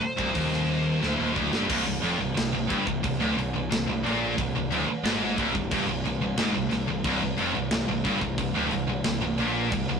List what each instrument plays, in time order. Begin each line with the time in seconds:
Already playing: lead electric guitar C5
0.01 muted picked electric bass stroke, muted distorted electric guitar stroke
0.17 picked electric bass C1, distorted electric guitar C2, kick
0.35 picked electric bass D#1, distorted electric guitar D#2, kick, open hi-hat
0.52 snare
1.01 picked electric bass D1, distorted electric guitar D2, snare
1.18 picked electric bass D#1, distorted electric guitar D#2
1.35 picked electric bass D1, distorted electric guitar D2, kick
1.52 picked electric bass G1, distorted electric guitar G2, snare
1.69 picked electric bass C1, distorted electric guitar C2, kick, crash
1.86 picked electric bass C1, distorted electric guitar C2
2.02 picked electric bass F1, distorted electric guitar F2, crash
2.19 picked electric bass C1, distorted electric guitar C2
2.36 picked electric bass C1, distorted electric guitar C2, snare, crash
2.52 picked electric bass C1, distorted electric guitar C2
2.69 picked electric bass G1, distorted electric guitar G2, kick, crash
2.87 picked electric bass C1, distorted electric guitar C2, kick
3.03 picked electric bass C1, distorted electric guitar C2, kick, crash
3.19 picked electric bass D1, distorted electric guitar D2
3.36 picked electric bass C1, distorted electric guitar C2, crash
3.53 picked electric bass C1, distorted electric guitar C2
3.70 picked electric bass C1, distorted electric guitar C2, snare, crash
3.87 picked electric bass C1, distorted electric guitar C2
4.03 picked electric bass A#1, distorted electric guitar A#2, crash
4.37 picked electric bass C1, distorted electric guitar C2, kick, crash
4.53 picked electric bass C1, distorted electric guitar C2
4.69 picked electric bass D1, distorted electric guitar D2, crash
4.87 muted distorted electric guitar stroke, muted picked electric bass stroke
5.03 picked electric bass G#1, distorted electric guitar G#2, snare, crash
5.38 picked electric bass C1, distorted electric guitar C2, kick, crash
5.55 picked electric bass C1, distorted electric guitar C2, kick
5.71 picked electric bass G1, distorted electric guitar G2, kick, crash
5.87 picked electric bass C1, distorted electric guitar C2
6.04 picked electric bass C1, distorted electric guitar C2, crash
6.20 picked electric bass C1, distorted electric guitar C2
6.36 picked electric bass G#1, distorted electric guitar G#2, snare, crash
6.54 picked electric bass C1, distorted electric guitar C2
6.69 picked electric bass C1, distorted electric guitar C2, snare, crash
6.87 picked electric bass C1, distorted electric guitar C2
7.04 picked electric bass C1, distorted electric guitar C2, kick, crash
7.21 picked electric bass C1, distorted electric guitar C2
7.37 picked electric bass F1, distorted electric guitar F2, crash
7.54 picked electric bass C1, distorted electric guitar C2
7.71 picked electric bass C1, distorted electric guitar C2, snare, crash
7.88 picked electric bass C1, distorted electric guitar C2
8.04 picked electric bass G1, distorted electric guitar G2, kick, crash
8.21 picked electric bass C1, distorted electric guitar C2, kick
8.38 picked electric bass C1, distorted electric guitar C2, kick, crash
8.55 picked electric bass D1, distorted electric guitar D2
8.71 picked electric bass C1, distorted electric guitar C2, crash
8.89 picked electric bass C1, distorted electric guitar C2
9.04 picked electric bass C1, distorted electric guitar C2, snare, crash
9.21 picked electric bass C1, distorted electric guitar C2
9.38 picked electric bass A#1, distorted electric guitar A#2, crash
9.72 picked electric bass C1, distorted electric guitar C2, kick, crash
9.88 picked electric bass C1, distorted electric guitar C2